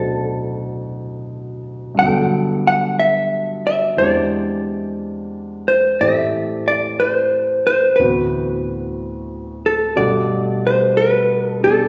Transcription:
Already playing: D2 A2 B2 C3 E3 F#3 A3 D4 A4 B4 C5
1.95 G2 D3
1.99 F#3 B3 G5
2.06 A4
2.51 F#5
2.67 F#5
2.99 E5
3.67 E5
3.97 E2 E3 G#3 C4 D4 D5
4.02 G4
5.15 C5
5.68 C5
6.01 A2 E3 A3 C4 G4 E5
6.68 D5
7.00 C5
7.67 C5
7.96 D2 E3 B4
8.00 A2 B3 C4 F#4
9.66 A4
9.96 G2 B2 G3 A3 D5 F#5
10.67 C5
10.97 B4
11.51 A4
11.61 A3 B3 D4 G4 A4

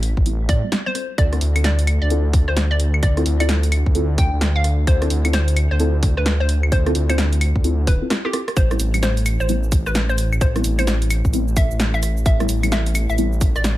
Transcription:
Already playing: A1 G3 B3 C4 E4
0.03 open hi-hat
0.17 A1, kick
0.26 G3 B3 C4 E4, closed hi-hat
0.49 A2 D5, kick, open hi-hat
0.63 G3 B3 C4 E4
0.72 G3 B3 C4 D4, snare, closed hi-hat
0.86 G3 B3 C4 E4 C5
0.95 C4 E4 F4 A4, cross-stick, open hi-hat
1.18 D2 D5, kick, closed hi-hat
1.33 C4 E4 F4 A4, cross-stick, closed hi-hat
1.41 D2, open hi-hat
1.56 C4 E4 F4 A4, closed hi-hat, claves
1.64 D5, snare, closed hi-hat
1.79 closed hi-hat
1.87 open hi-hat, claves
2.02 D2 D5
2.10 C4 E4 F4 A4, closed hi-hat
2.33 kick, open hi-hat
2.48 D2 C5, cross-stick
2.57 snare, closed hi-hat
2.71 D5
2.80 open hi-hat
2.94 claves
3.03 D2 D5, kick, closed hi-hat
3.17 C4 E4 F4 A4, cross-stick, closed hi-hat
3.26 D2, open hi-hat
3.40 C4 E4 F4 A4 D5, closed hi-hat, claves
3.49 snare, closed hi-hat
3.63 closed hi-hat
3.72 open hi-hat, claves
3.86 D2, kick
3.95 C4 E4 F4 A4, closed hi-hat
4.18 G5, kick, open hi-hat
4.33 D2
4.41 snare, closed hi-hat
4.56 F5
4.64 cross-stick, open hi-hat
4.87 D2 C5, kick, closed hi-hat
5.02 C4 E4 F4 A4, cross-stick, closed hi-hat
5.10 D2, open hi-hat
5.25 C4 E4 F4 A4, closed hi-hat, claves
5.33 C5, snare, closed hi-hat
5.48 closed hi-hat
5.57 open hi-hat, claves
5.71 D2 C5
5.80 C4 E4 F4 A4, closed hi-hat
6.03 kick, open hi-hat
6.17 D2 B4, cross-stick
6.26 snare, closed hi-hat
6.40 C5
6.49 open hi-hat
6.63 claves
6.72 D2 C5, kick, closed hi-hat
6.86 C4 E4 F4 A4, cross-stick, closed hi-hat
6.95 D2, open hi-hat
7.09 C4 E4 F4 A4 C5, closed hi-hat, claves
7.18 snare, closed hi-hat
7.33 closed hi-hat
7.41 open hi-hat, claves
7.56 D2, kick
7.64 C4 E4 F4 A4, closed hi-hat
7.87 D1 B4, kick, open hi-hat
8.02 C4 E4 F4 A4
8.10 C4 E4 F4 G4, cross-stick, snare, closed hi-hat
8.25 C4 E4 F4 G4 A4, cross-stick
8.33 C4 E4 F4 A4, cross-stick, open hi-hat
8.48 cross-stick, closed hi-hat
8.57 A1 C5, kick, closed hi-hat, shaker
8.71 G3 B3 C4 E4, cross-stick, closed hi-hat, shaker
8.80 A1, open hi-hat, shaker
8.94 G3 B3 C4 E4, closed hi-hat, claves, shaker
9.03 C5, snare, closed hi-hat, shaker
9.17 closed hi-hat, shaker
9.26 open hi-hat, claves, shaker
9.40 A1 C5, shaker
9.49 G3 B3 C4 E4, closed hi-hat, shaker
9.63 shaker
9.72 kick, open hi-hat, shaker
9.86 A1 B4, cross-stick, shaker
9.95 snare, closed hi-hat, shaker
10.09 C5, shaker
10.18 open hi-hat, shaker
10.33 claves, shaker
10.41 A1 C5, kick, closed hi-hat, shaker
10.56 G3 B3 C4 E4, cross-stick, closed hi-hat, shaker
10.64 A1, open hi-hat, shaker
10.79 G3 B3 C4 E4 C5, closed hi-hat, claves, shaker
10.87 snare, closed hi-hat, shaker
11.02 closed hi-hat, shaker
11.10 open hi-hat, claves, shaker
11.25 A1, kick, shaker
11.33 G3 B3 C4 E4, closed hi-hat, shaker
11.48 shaker
11.56 E5, kick, open hi-hat, shaker
11.71 A1, shaker
11.80 snare, closed hi-hat, shaker
11.94 E5, shaker
12.03 cross-stick, open hi-hat, shaker
12.17 shaker
12.26 A1 E5, kick, closed hi-hat, shaker
12.40 G3 B3 C4 E4, cross-stick, closed hi-hat, shaker
12.49 A1, open hi-hat, shaker
12.63 G3 B3 C4 E4, closed hi-hat, claves, shaker
12.72 E5, snare, closed hi-hat, shaker
12.86 closed hi-hat, shaker
12.95 open hi-hat, claves, shaker
13.09 A1 E5, shaker
13.18 G3 B3 C4 E4, closed hi-hat, shaker
13.33 shaker
13.41 kick, open hi-hat, shaker
13.56 A1 D5, cross-stick, shaker
13.64 snare, closed hi-hat, shaker

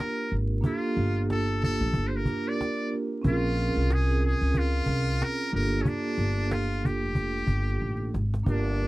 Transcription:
Already playing: A#3 D4 F4 G4 A#4
0.00 cajon slap
0.32 G#1, cajon slap
0.61 A#3 D4 F4, cajon bass
0.65 F4 G4 A4
0.97 G1
1.30 A4, cajon slap
1.63 A4, cajon bass
1.81 A#1
1.93 G1, cajon bass
2.08 C5
2.13 A#4, cajon slap
2.25 A#3 D4 F4 G4 A#4, cajon bass
2.48 D5
2.61 cajon slap
2.93 cajon slap
3.21 A#1 C4 C#4 F4, cajon bass
3.26 F4 G#4 A#4
3.57 cajon slap
3.76 C2
3.90 G#4, cajon slap
4.26 G#4
4.41 C#2
4.54 F4, cajon bass
4.86 C2, cajon bass
5.22 A#4, cajon slap
5.50 G1 A#3 D4 F4
5.55 G4 A4 A#4
5.82 C#4, cajon bass
5.88 D4
6.18 G1
6.51 F4, cajon slap
6.85 G4, cajon bass
7.02 F1
7.15 cajon bass
7.47 G1, cajon bass
7.80 A1, cajon slap
8.14 G#1, cajon slap
8.34 cajon slap
8.43 G1 A#3 D4 F4, cajon bass
8.48 D4 G4 A#4
8.80 cajon slap

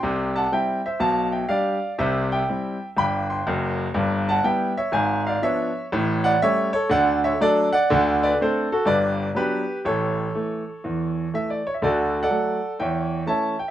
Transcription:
Already playing: G5 C6
0.03 C2 C3
0.36 F#5 A5
0.52 G3 C4 E4 E5 G5
0.86 C5 E5
1.00 B1 B2 F5 A5
1.32 E5 G5
1.49 G3 D4 G4 D5 F5
1.98 C2 C3 C5 E5
2.32 E5 G5
2.49 G3 C4 E4
2.97 G1 G2 G5 B5
3.30 G5 C6
3.47 F#1 F#2
3.94 G1 G2
4.29 F#5 A5
4.44 G3 B3 E4 E5 G5
4.77 C#5 E5
4.92 G#1 G#2 F5 G#5
5.27 D5 F5
5.42 F3 B3 D4 C#5 E5
5.92 A1 A2
6.24 D5 F#5
6.42 G3 A3 C#4 C#5 E5
6.73 A4 C#5
6.89 D2 D3 D5 F#5
7.24 C#5 E5
7.41 F#3 A3 D4 A4 D5
7.73 D5 F#5
7.90 D2 D3
8.23 B4 D5
8.41 A3 C4 D4 A4 C5
8.72 F#4 A4
8.85 G1 G2 B4 D5
9.35 F#3 B3 D4 G4 B4
9.85 A1 A2 A4 C#5
10.35 E3 A3
10.84 E2 E3
11.33 E3 A3 E5
11.50 D5
11.67 C#5
11.74 E5
11.82 D2 D3 F#4 A4 D5
12.23 A4 D5 F#5
12.30 F#3 A3
12.79 E2 E3 C#5 E5 G5
13.26 E3 A3 C#4 C#5 E5 A5
13.59 G5

